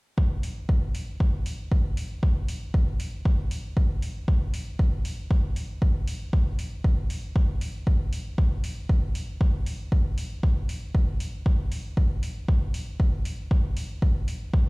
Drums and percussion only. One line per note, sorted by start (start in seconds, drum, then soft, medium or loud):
0.18 kick loud
0.43 open hi-hat medium
0.69 kick loud
0.95 open hi-hat medium
1.20 kick loud
1.46 open hi-hat medium
1.72 kick loud
1.97 open hi-hat medium
2.23 kick loud
2.48 open hi-hat medium
2.74 kick loud
3.00 open hi-hat medium
3.25 kick loud
3.51 open hi-hat medium
3.77 kick loud
4.02 open hi-hat medium
4.28 kick loud
4.54 open hi-hat medium
4.79 kick loud
5.05 open hi-hat medium
5.31 kick loud
5.56 open hi-hat medium
5.82 kick loud
6.08 open hi-hat medium
6.33 kick loud
6.59 open hi-hat medium
6.84 kick loud
7.10 open hi-hat medium
7.36 kick loud
7.61 open hi-hat medium
7.87 kick loud
8.13 open hi-hat medium
8.38 kick loud
8.64 open hi-hat medium
8.89 kick loud
9.15 open hi-hat medium
9.41 kick loud
9.66 open hi-hat medium
9.92 kick loud
10.18 open hi-hat medium
10.43 kick loud
10.69 open hi-hat medium
10.95 kick loud
11.20 open hi-hat medium
11.46 kick loud
11.72 open hi-hat medium
11.97 kick loud
12.23 open hi-hat medium
12.48 kick loud
12.74 open hi-hat medium
13.00 kick loud
13.25 open hi-hat medium
13.51 kick loud
13.77 open hi-hat medium
14.02 kick loud
14.28 open hi-hat medium
14.54 kick loud